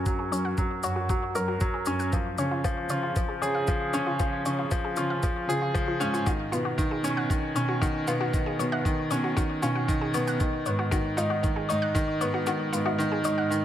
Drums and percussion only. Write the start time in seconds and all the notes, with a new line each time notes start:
0.06 kick, shaker
0.33 shaker
0.57 kick, shaker
0.83 shaker
1.09 kick, shaker
1.35 shaker
1.60 kick, shaker
1.86 shaker
2.00 shaker
2.12 kick, shaker
2.38 shaker
2.64 kick, shaker
2.89 shaker
3.16 kick, shaker
3.42 shaker
3.67 kick, shaker
3.93 shaker
4.19 kick, shaker
4.45 shaker
4.71 kick, shaker
4.96 shaker
5.23 kick, shaker
5.50 shaker
5.75 kick, shaker
6.01 shaker
6.14 shaker
6.26 kick, shaker
6.53 shaker
6.78 kick, shaker
7.04 shaker
7.30 kick, shaker
7.56 shaker
7.82 kick, shaker
8.07 shaker
8.33 kick, shaker
8.60 shaker
8.72 low woodblock
8.85 kick, shaker
9.11 shaker
9.37 kick, shaker
9.63 shaker
9.89 kick, shaker
10.14 shaker
10.27 shaker
10.40 kick, shaker
10.66 shaker
10.92 kick, shaker
11.18 shaker
11.44 kick, shaker
11.70 shaker
11.95 kick, shaker
12.21 shaker
12.46 shaker
12.73 shaker
12.86 low woodblock
13.00 shaker
13.24 shaker
13.52 shaker